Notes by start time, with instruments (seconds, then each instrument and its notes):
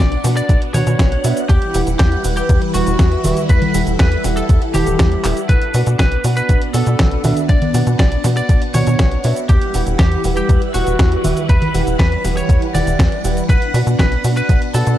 Already playing: string machine B3 D4 F#5
0.00 analog synth bass B1, lead electric guitar D5
0.12 closed hi-hat
0.24 analog synth bass B2, grand piano D4 F#4 B4 F#5, snare, open hi-hat, cabasa
0.37 lead electric guitar D5, closed hi-hat, cabasa
0.49 analog synth bass B1, kick, closed hi-hat, cabasa
0.62 closed hi-hat
0.74 analog synth bass B2, grand piano D4 F#4 B4 F#5, lead electric guitar C#5, open hi-hat, high conga, cabasa
0.87 analog synth bass B2, closed hi-hat, cabasa
0.99 analog synth bass B1, kick, snare, closed hi-hat, cabasa
1.12 closed hi-hat
1.24 analog synth bass B2, grand piano D4 F#4 B4 E5, open hi-hat, cabasa
1.37 closed hi-hat, cabasa
1.49 analog synth bass E2, string machine E3 G3 E4 B4, lead electric guitar G4, kick, closed hi-hat, cabasa
1.62 closed hi-hat
1.74 analog synth bass E1, grand piano E4 G4 B4 F#5, open hi-hat, cabasa
1.87 analog synth bass E1, closed hi-hat, cabasa
1.99 analog synth bass E2, lead electric guitar G4, kick, snare, closed hi-hat, cabasa
2.12 closed hi-hat
2.24 analog synth bass E1, grand piano E4 G4 B4 F#5, open hi-hat, cabasa
2.37 lead electric guitar G4, closed hi-hat, cabasa
2.49 analog synth bass E2, kick, closed hi-hat, cabasa
2.62 closed hi-hat
2.74 analog synth bass E1, grand piano G3 E4 B4 F#5, lead electric guitar F#4, open hi-hat, cabasa
2.87 analog synth bass E1, closed hi-hat, cabasa
2.99 analog synth bass E2, kick, snare, closed hi-hat, cabasa
3.12 closed hi-hat
3.24 analog synth bass E1, grand piano E4 G4 B4 E5, open hi-hat, high conga, cabasa
3.37 closed hi-hat, cabasa
3.49 analog synth bass E2, string machine A4, lead electric guitar B4, kick, closed hi-hat, cabasa
3.62 closed hi-hat, high conga
3.74 analog synth bass E1, grand piano E4 G4 B4 F#5, open hi-hat, cabasa
3.87 analog synth bass E1, closed hi-hat, cabasa
3.99 analog synth bass E2, lead electric guitar B4, kick, snare, closed hi-hat, cabasa
4.12 closed hi-hat
4.24 analog synth bass E1, grand piano E4 G4 B4 F#5, snare, open hi-hat, cabasa
4.37 lead electric guitar A4, closed hi-hat, cabasa
4.49 analog synth bass E2, kick, closed hi-hat, cabasa
4.62 closed hi-hat
4.74 analog synth bass E1, grand piano E4 G4 B4 F#5, lead electric guitar G4, open hi-hat, high conga, cabasa
4.87 analog synth bass E1, closed hi-hat, cabasa
4.99 analog synth bass E2, kick, snare, closed hi-hat, cabasa
5.12 closed hi-hat
5.24 analog synth bass E1, grand piano E4 G4 B4 E5, clap, open hi-hat, cabasa
5.37 closed hi-hat, cabasa
5.49 analog synth bass B1, string machine B3 D4 F#5, lead electric guitar B4, kick, closed hi-hat, cabasa
5.62 closed hi-hat
5.74 analog synth bass B2, grand piano D4 F#4 B4 F#5, open hi-hat, cabasa
5.87 analog synth bass B2, closed hi-hat, cabasa
5.99 analog synth bass B1, lead electric guitar B4, kick, snare, closed hi-hat, cabasa
6.12 closed hi-hat
6.24 analog synth bass B2, grand piano D4 F#4 B4 F#5, open hi-hat, cabasa
6.37 lead electric guitar B4, closed hi-hat, cabasa
6.49 analog synth bass B1, kick, closed hi-hat, cabasa
6.62 closed hi-hat
6.74 analog synth bass B2, grand piano D4 F#4 B4 F#5, lead electric guitar A4, open hi-hat, cabasa
6.86 analog synth bass B2, closed hi-hat, cabasa
6.99 analog synth bass B1, kick, snare, closed hi-hat, cabasa
7.11 closed hi-hat
7.24 analog synth bass B2, grand piano D4 F#4 B4 E5, open hi-hat, high conga, cabasa
7.37 closed hi-hat, cabasa
7.49 analog synth bass B1, lead electric guitar D5, kick, closed hi-hat, cabasa
7.62 closed hi-hat, high conga
7.74 analog synth bass B2, grand piano D4 F#4 B4 F#5, open hi-hat, cabasa
7.87 analog synth bass B2, closed hi-hat, cabasa
7.99 analog synth bass B1, lead electric guitar D5, kick, snare, closed hi-hat, cabasa
8.12 closed hi-hat
8.24 analog synth bass B2, grand piano D4 F#4 B4 F#5, snare, open hi-hat, cabasa
8.37 lead electric guitar D5, closed hi-hat, cabasa
8.49 analog synth bass B1, kick, closed hi-hat, cabasa
8.62 closed hi-hat
8.74 analog synth bass B2, grand piano D4 F#4 B4 F#5, lead electric guitar C#5, open hi-hat, high conga, cabasa
8.87 analog synth bass B2, closed hi-hat, cabasa
8.99 analog synth bass B1, kick, snare, closed hi-hat, cabasa
9.12 closed hi-hat
9.24 analog synth bass B2, grand piano D4 F#4 B4 E5, open hi-hat, cabasa
9.36 closed hi-hat, cabasa
9.49 analog synth bass E2, string machine E3 G3 E4 B4, lead electric guitar G4, kick, closed hi-hat, cabasa
9.62 closed hi-hat
9.74 analog synth bass E1, grand piano E4 G4 B4 F#5, open hi-hat, cabasa
9.87 analog synth bass E1, closed hi-hat, cabasa
9.99 analog synth bass E2, lead electric guitar G4, kick, snare, closed hi-hat, cabasa
10.12 closed hi-hat
10.24 analog synth bass E1, grand piano E4 G4 B4 F#5, open hi-hat, cabasa
10.37 lead electric guitar G4, closed hi-hat, cabasa
10.49 analog synth bass E2, kick, closed hi-hat, cabasa
10.62 closed hi-hat
10.74 analog synth bass E1, grand piano G3 E4 B4 F#5, lead electric guitar F#4, open hi-hat, cabasa
10.87 analog synth bass E1, closed hi-hat, cabasa
10.99 analog synth bass E2, kick, snare, closed hi-hat, cabasa
11.12 closed hi-hat
11.24 analog synth bass E1, grand piano E4 G4 B4 E5, open hi-hat, high conga, cabasa
11.37 closed hi-hat, cabasa
11.49 analog synth bass E2, lead electric guitar B4, kick, closed hi-hat, cabasa
11.62 closed hi-hat, high conga
11.74 analog synth bass E1, grand piano E4 G4 B4 F#5, open hi-hat, cabasa
11.87 analog synth bass E1, closed hi-hat, cabasa
11.99 analog synth bass E2, lead electric guitar B4, kick, snare, closed hi-hat, cabasa
12.12 closed hi-hat
12.24 analog synth bass E1, grand piano E4 G4 B4 F#5, snare, open hi-hat, cabasa
12.37 lead electric guitar C#5, closed hi-hat, cabasa
12.49 analog synth bass E2, kick, closed hi-hat, cabasa
12.62 closed hi-hat
12.74 analog synth bass E1, grand piano E4 G4 B4 F#5, lead electric guitar D5, open hi-hat, high conga, cabasa
12.87 analog synth bass E1, closed hi-hat, cabasa
12.99 analog synth bass E2, kick, snare, closed hi-hat, cabasa
13.12 closed hi-hat
13.24 analog synth bass E1, grand piano E4 G4 B4 F#5, open hi-hat, cabasa
13.37 closed hi-hat, cabasa
13.49 analog synth bass B1, string machine B3 D4, lead electric guitar B4, kick, closed hi-hat, cabasa
13.62 closed hi-hat
13.74 analog synth bass B2, grand piano D4 F#4 B4 F#5, open hi-hat, cabasa
13.87 analog synth bass B2, closed hi-hat, cabasa
13.99 analog synth bass B1, lead electric guitar B4, kick, snare, closed hi-hat, cabasa
14.12 closed hi-hat
14.24 analog synth bass B2, grand piano D4 F#4 B4 F#5, open hi-hat, cabasa
14.37 lead electric guitar B4, closed hi-hat, cabasa
14.49 analog synth bass B1, kick, closed hi-hat, cabasa
14.62 closed hi-hat
14.74 analog synth bass B2, grand piano D4 F#4 B4 F#5, lead electric guitar A4, open hi-hat, cabasa
14.87 analog synth bass B2, closed hi-hat, cabasa